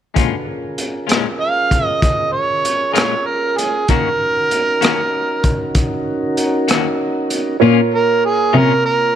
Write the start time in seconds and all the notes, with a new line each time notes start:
0.14 A#2 G#3 C#4 D4 F4 F#4 A4 B4, kick, closed hi-hat
0.47 C#4 F4 G#4 A#4
0.78 closed hi-hat
1.07 A#2 G#3 C#4 F4, closed hi-hat
1.12 cross-stick
1.41 F5
1.71 kick, closed hi-hat
1.85 D#5
2.02 D#5, kick, closed hi-hat
2.32 C#5
2.65 closed hi-hat
2.93 A#2 G#3 C#4 F4 G#4 A#4 C#5, closed hi-hat
2.98 cross-stick
3.26 A#4
3.57 G#4, closed hi-hat
3.88 D#3 A#3 C#4 D#4 F#4 A#4, kick, closed hi-hat
4.51 closed hi-hat
4.81 D#3 A#3 C#4 F#4, cross-stick, closed hi-hat
5.44 kick, closed hi-hat
5.75 kick, closed hi-hat
6.37 closed hi-hat
6.68 D#3 A#3 C#4 F#4, cross-stick, closed hi-hat
7.30 closed hi-hat
7.60 A#2 A#3 C#4 F4 A#4 C#5
7.94 A#4
8.25 G#4
8.53 A#2 C3 A#3 C#4 F4
8.57 A#4
8.86 A#4